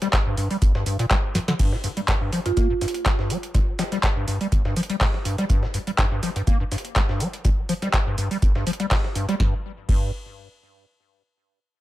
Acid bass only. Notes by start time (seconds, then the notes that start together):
0.02 G3
0.26 G2
0.37 G2
0.51 G3
0.62 G1
0.75 G2
0.86 G2
0.99 A#2
1.11 G3
1.35 G2
1.48 D3
1.59 G2
1.72 A#2
1.84 G2
1.97 G3
2.08 G2
2.21 G2
2.33 F3
2.46 G2
2.57 A#3
2.70 G2
2.81 G2
3.06 G3
3.19 G2
3.30 G3
3.55 A#2
3.79 F3
3.92 G3
4.16 G2
4.28 G2
4.41 G3
4.52 G1
4.65 G2
4.76 F3
4.90 G3
5.01 A#2
5.25 G2
5.38 G3
5.50 G2
5.63 A#2
5.74 G2
5.87 G3
5.98 G2
6.12 G2
6.23 F3
6.36 G2
6.47 A#3
6.60 G2
6.72 G2
6.96 G3
7.09 G2
7.20 G3
7.45 A#2
7.69 F3
7.82 G3
8.07 G2
8.18 G2
8.31 G3
8.42 G1
8.55 G2
8.67 F3
8.80 G3
8.91 A#2
9.15 G2
9.29 G3
9.40 G2
9.89 G2